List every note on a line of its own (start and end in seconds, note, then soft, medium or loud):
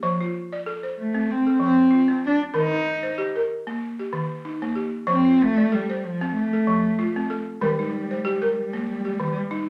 0.00 0.34 F3 medium
0.00 0.20 G4 medium
0.00 0.52 C5 medium
0.21 0.66 F4 medium
0.53 0.98 D5 medium
0.66 0.98 A4 medium
0.83 1.29 C5 medium
0.98 1.32 A3 medium
1.15 1.46 C4 medium
1.31 1.62 C4 medium
1.47 1.92 A4 soft
1.60 1.92 F3 medium
1.60 2.21 C4 medium
1.91 2.41 F4 medium
2.08 2.41 C4 medium
2.26 2.40 D4 medium
2.54 2.87 D#3 medium
2.54 3.16 D#4 medium
2.54 3.04 A#4 medium
2.72 3.18 D#4 medium
3.03 3.50 C5 medium
3.18 3.50 G4 medium
3.36 3.82 A#4 medium
3.67 3.99 A#3 medium
3.99 4.45 G4 medium
4.13 4.45 D#3 medium
4.45 4.95 D#4 medium
4.62 4.94 A#3 medium
4.75 5.26 G4 medium
5.07 5.40 F3 medium
5.07 5.44 C4 medium
5.07 5.57 C5 medium
5.25 5.71 F4 soft
5.43 5.75 A3 loud
5.57 6.03 D5 medium
5.72 6.07 G3 medium
5.72 6.04 A4 medium
5.90 6.35 C5 medium
6.05 6.35 F3 medium
6.21 6.53 C4 medium
6.35 7.26 A3 medium
6.53 6.99 A4 medium
6.67 6.99 F3 medium
6.99 7.48 F4 medium
7.16 7.48 C4 medium
7.30 7.79 A4 medium
7.61 7.93 D#3 medium
7.61 7.69 G3 medium
7.61 8.11 A#4 medium
7.70 7.78 G3 medium
7.79 7.85 G3 medium
7.79 8.25 D#4 medium
7.86 7.92 G3 medium
7.92 8.00 G3 medium
8.00 8.08 G3 medium
8.09 8.15 G3 medium
8.09 8.57 C5 medium
8.17 8.21 G3 medium
8.22 8.29 G3 medium
8.22 8.57 G4 medium
8.29 8.36 G3 medium
8.37 8.43 G3 medium
8.42 8.51 G3 medium
8.42 8.88 A#4 medium
8.51 8.57 G3 medium
8.57 8.65 G3 soft
8.65 8.74 G3 medium
8.73 8.82 G3 soft
8.73 9.06 A#3 medium
8.82 8.88 G3 medium
8.88 8.96 G3 medium
8.97 9.05 G3 medium
9.05 9.12 G3 medium
9.05 9.51 G4 soft
9.14 9.20 G3 medium
9.20 9.51 D#3 medium
9.20 9.28 G3 medium
9.29 9.36 G3 medium
9.51 9.69 D#4 medium